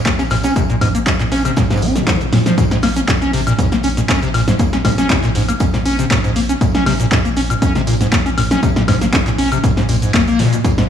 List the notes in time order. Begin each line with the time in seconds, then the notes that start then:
0.05 A#3, kick, snare, clap, closed hi-hat, tambourine, shaker
0.19 C#4, snare, closed hi-hat, tambourine, shaker
0.30 A#1 A#2, snare, open hi-hat, tambourine, high woodblock
0.43 C#4, snare, closed hi-hat, tambourine, shaker
0.56 C3, kick, closed hi-hat, tambourine, shaker
0.69 A#2, closed hi-hat, shaker
0.81 A#1 G#2, kick, snare, open hi-hat, tambourine, high woodblock
0.95 A#3, closed hi-hat, shaker
1.06 C#4, kick, snare, clap, closed hi-hat, tambourine, shaker
1.20 A#2, clap, closed hi-hat, shaker
1.32 A#1 C#4, snare, open hi-hat, tambourine
1.45 C3, closed hi-hat, high woodblock, shaker
1.56 A#2, kick, snare, closed hi-hat, tambourine, shaker
1.70 G#2, snare, closed hi-hat, tambourine, shaker
1.76 snare, tambourine
1.82 A#1 C#4, open hi-hat
1.96 A#2, snare, closed hi-hat, shaker
2.07 F3, kick, snare, clap, closed hi-hat, tambourine, shaker
2.21 A#2, closed hi-hat, shaker
2.32 A#2, snare, open hi-hat, tambourine
2.46 F3, snare, closed hi-hat, shaker
2.58 A#2, kick, closed hi-hat, tambourine, shaker
2.71 G#2, snare, closed hi-hat, shaker
2.83 A#1 A#3, snare, open hi-hat, high woodblock
2.96 C#4, closed hi-hat, shaker
3.08 A#2, kick, snare, clap, closed hi-hat, tambourine, shaker
3.22 C#4, closed hi-hat, shaker
3.33 A#1 C3, open hi-hat, tambourine
3.47 A#2, closed hi-hat, high woodblock, shaker
3.59 G#2, kick, closed hi-hat, tambourine, shaker
3.72 A#3, snare, closed hi-hat, shaker
3.83 A#1 C#4, open hi-hat, tambourine
3.97 A#2, snare, closed hi-hat, shaker
4.09 C#4, kick, snare, clap, closed hi-hat, tambourine, shaker
4.22 C3, closed hi-hat, shaker
4.34 A#1 A#2, snare, open hi-hat, tambourine, high woodblock
4.48 G#2, snare, closed hi-hat, shaker
4.59 A#3, kick, closed hi-hat, tambourine, shaker
4.73 C#4, snare, closed hi-hat, shaker
4.85 A#1 A#2, kick, snare, open hi-hat, tambourine, high woodblock
4.98 C#4, snare, closed hi-hat, shaker
5.09 C3, kick, snare, clap, closed hi-hat, tambourine, shaker
5.23 A#2, clap, closed hi-hat, shaker
5.35 A#1 G#2, open hi-hat, tambourine
5.49 A#3, closed hi-hat, high woodblock, shaker
5.60 C#4, kick, closed hi-hat, tambourine, shaker
5.74 A#2, snare, closed hi-hat, shaker
5.85 A#1 C#4, open hi-hat, tambourine
5.99 C3, closed hi-hat, shaker
6.10 A#2, kick, snare, clap, closed hi-hat, tambourine, shaker
6.24 G#2, closed hi-hat, shaker
6.36 A#1 A#3, snare, open hi-hat, tambourine
6.49 C#4, closed hi-hat, shaker
6.61 A#2, kick, closed hi-hat, tambourine, shaker
6.75 C#4, snare, closed hi-hat, shaker
6.86 A#1 C3, snare, open hi-hat, high woodblock
7.00 A#2, closed hi-hat, shaker
7.11 G#2, kick, snare, clap, closed hi-hat, tambourine, shaker
7.25 A#3, closed hi-hat, shaker
7.36 A#1 C#4, open hi-hat, tambourine
7.50 A#2, closed hi-hat, high woodblock, shaker
7.62 C#4, kick, closed hi-hat, tambourine, shaker
7.75 C3, snare, closed hi-hat, shaker
7.87 A#1 A#2, open hi-hat, tambourine
8.01 G#2, snare, closed hi-hat, shaker
8.12 A#3, kick, snare, clap, closed hi-hat, tambourine, shaker
8.26 C#4, closed hi-hat, shaker
8.37 A#1 A#2, snare, open hi-hat, tambourine, high woodblock
8.51 C#4, snare, closed hi-hat, shaker
8.63 C3, kick, closed hi-hat, tambourine, shaker
8.76 A#2, snare, closed hi-hat, shaker
8.88 A#1 G#2, kick, snare, open hi-hat, tambourine, high woodblock
9.01 A#3, snare, closed hi-hat, shaker
9.13 C#4, kick, snare, clap, closed hi-hat, tambourine, shaker
9.26 A#2, clap, closed hi-hat, shaker
9.38 A#1 C#4, open hi-hat
9.52 C3, closed hi-hat, high woodblock, shaker
9.64 A#2, kick, closed hi-hat, tambourine, shaker
9.77 G#2, snare, closed hi-hat, shaker
9.89 A#1 A#2, open hi-hat, tambourine
10.02 G#2, closed hi-hat, shaker
10.13 A#3, kick, snare, clap, closed hi-hat, tambourine, shaker
10.28 A#3, closed hi-hat, shaker
10.39 A#2, snare, open hi-hat, tambourine
10.53 C3, closed hi-hat, shaker
10.64 A#2, kick, closed hi-hat, tambourine, shaker
10.78 G#2, snare, closed hi-hat, shaker